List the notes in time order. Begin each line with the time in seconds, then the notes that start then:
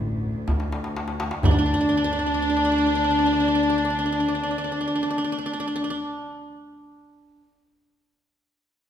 Already playing: A1 D2
0.00 darbuka ka
0.48 D2, darbuka tek, frame drum
0.60 darbuka ka
0.72 darbuka tek
0.84 darbuka ka
0.97 darbuka tek
1.08 darbuka ka
1.20 darbuka tek
1.31 darbuka ka
1.43 D2 D4, darbuka dum, frame drum
1.51 D4
1.59 D4
1.66 D4
1.74 D4
1.81 D4
1.89 D4
1.97 D4
2.04 D4
2.13 D4
2.19 D4
2.26 D4
2.34 D4
2.42 D4
2.50 D4
2.57 D4
2.65 D4
2.72 D4
2.78 D4
2.87 D4
2.95 D4
3.04 D4
3.11 D4
3.19 D4
3.26 D4
3.33 D4
3.40 D4
3.48 D4
3.55 D4
3.63 D4
3.70 D4
3.78 D4
3.85 D4
3.90 D4
3.99 D4
4.06 D4
4.12 D4
4.20 D4
4.28 D4
4.35 D4
4.43 D4
4.51 D4
4.58 D4
4.64 D4
4.72 D4
4.81 D4
4.88 D4
4.95 D4
5.03 D4
5.10 D4
5.18 D4
5.24 D4
5.32 D4
5.38 D4
5.46 D4
5.53 D4
5.60 D4
5.67 D4
5.76 D4
5.84 D4
5.90 D4